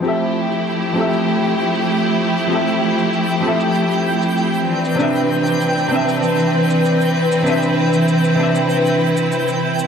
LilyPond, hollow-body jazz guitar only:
\new Staff \with { instrumentName = "Hollow-body jazz guitar" } { \time 4/4 \key f \lydian \tempo 4 = 97 <f c' g' a' e''>4. <f c' g' a' e''>2~ <f c' g' a' e''>8 | <f c' g' a' e''>4. <f c' g' a' e''>2 r8 | <c c' d' b' e''>4. <c c' d' b' e''>2~ <c c' d' b' e''>8 | <c c' d' b' e''>4. <c c' d' b' e''>2~ <c c' d' b' e''>8 | }